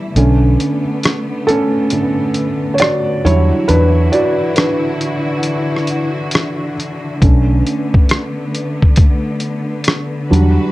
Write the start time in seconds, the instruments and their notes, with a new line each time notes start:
Already playing: string section E3 G3 E4, felt piano G3 F#4
0.16 fingered electric bass B1, string section D3 A3 B3, felt piano D3 A3 C#4, closed hi-hat
0.60 closed hi-hat
1.04 cross-stick, closed hi-hat
1.47 felt piano C#4 A4, closed hi-hat
1.90 felt piano D3 A3 C#4, closed hi-hat
2.34 closed hi-hat
2.74 felt piano C#5
2.78 felt piano F#4 D5, cross-stick, closed hi-hat
3.24 fingered electric bass E2, string section E3 E4 F#4, felt piano F#3 G3 D4 E4 C#5, closed hi-hat
3.68 fingered electric bass E2, felt piano D4 B4, closed hi-hat
4.12 felt piano F#4 D5, closed hi-hat
4.56 felt piano D4 B4, cross-stick, closed hi-hat
5.01 closed hi-hat
5.43 closed hi-hat
5.76 cross-stick
5.87 closed hi-hat
6.31 cross-stick, closed hi-hat
6.80 closed hi-hat
7.20 fingered electric bass B1, felt piano D3 A3 C#4, string section A3 B3, kick, closed hi-hat
7.66 closed hi-hat
7.94 kick
8.09 cross-stick, closed hi-hat
8.55 closed hi-hat
8.82 kick
8.96 kick, closed hi-hat
9.40 closed hi-hat
9.84 cross-stick, closed hi-hat
10.29 fingered electric bass E2, string section E3 F#4 B4, felt piano F#3 G3 D4
10.33 closed hi-hat